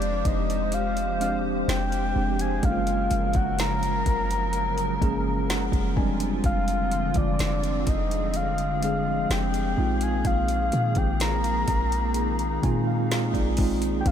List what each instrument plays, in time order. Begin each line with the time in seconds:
Already playing: 808-style bass F1, analog synth pad F3 G#3 G4 C5, tine electric piano G#3 C4 D4 G4, soft synth lead D5
0.02 closed hi-hat
0.25 808-style bass F1, soft synth lead D#5, kick, closed hi-hat
0.50 closed hi-hat
0.72 soft synth lead F5, closed hi-hat
0.97 closed hi-hat
1.19 tine electric piano G#3 C4 D4 G4, soft synth lead F5, closed hi-hat
1.68 808-style bass F1, soft synth lead G5, snare, closed hi-hat
1.92 closed hi-hat
2.15 808-style bass F1, tine electric piano G#3 C4 D4 G4
2.39 soft synth lead G#5, closed hi-hat
2.62 808-style bass F#1, analog synth pad C#3 F3 F#3 A#4, tine electric piano G#3 A#3 C#4 D#4, soft synth lead F5, kick, closed hi-hat
2.72 tine electric piano F4
2.87 closed hi-hat
3.11 808-style bass F#1, closed hi-hat
3.33 808-style bass F#1, soft synth lead F#5, kick, closed hi-hat
3.59 soft synth lead A#5, snare, closed hi-hat
3.83 closed hi-hat
4.06 808-style bass F#1, kick, closed hi-hat
4.31 closed hi-hat
4.53 closed hi-hat
4.78 closed hi-hat
5.00 808-style bass F#1, tine electric piano G#3 A#3 C#4 G#4 A#5, kick, closed hi-hat
5.50 tine electric piano F#5, snare, closed hi-hat
5.72 808-style bass F1, kick, closed hi-hat
5.96 analog synth pad D3 C4 F4, tine electric piano G3 G#3 C4 D4 G#5, kick
6.20 closed hi-hat
6.44 808-style bass F1, soft synth lead F5, kick, closed hi-hat
6.68 closed hi-hat
6.92 closed hi-hat
7.14 808-style bass F1, soft synth lead D5, kick, closed hi-hat
7.39 808-style bass F1, snare, closed hi-hat
7.63 closed hi-hat
7.87 808-style bass F1, analog synth pad G#4, soft synth lead D#5, kick, closed hi-hat
8.11 closed hi-hat
8.34 soft synth lead F5, closed hi-hat
8.58 closed hi-hat
8.81 tine electric piano G#3 C4 D4 G#4, soft synth lead F5, closed hi-hat
9.30 808-style bass F1, soft synth lead G5, snare, closed hi-hat
9.54 closed hi-hat
9.76 808-style bass A#1, analog synth pad D#3 A#3, tine electric piano G#3 C4 D#4 F4
10.01 soft synth lead G#5, closed hi-hat
10.25 808-style bass A#1, soft synth lead F5, kick, closed hi-hat
10.48 closed hi-hat
10.72 808-style bass A#2, closed hi-hat
10.95 808-style bass A#1, soft synth lead G5, kick, closed hi-hat
11.20 soft synth lead A#5, snare, closed hi-hat
11.44 closed hi-hat
11.68 808-style bass A#1, analog synth pad D#4, kick, closed hi-hat
11.92 closed hi-hat
12.14 closed hi-hat
12.39 closed hi-hat
12.62 808-style bass A#2, tine electric piano G#3 C4 D#4 F4 G#5, kick, closed hi-hat
12.87 tine electric piano F5
13.11 tine electric piano F5, snare, closed hi-hat
13.34 808-style bass A#1, tine electric piano D5, kick, closed hi-hat
13.57 tine electric piano G#3 C4 D#4 F4, kick, open hi-hat
13.82 closed hi-hat
14.00 soft synth lead G5
14.05 808-style bass F1, analog synth pad D3 G#3 F4 G4, tine electric piano G3 C4 D4 G4, soft synth lead F5, kick, closed hi-hat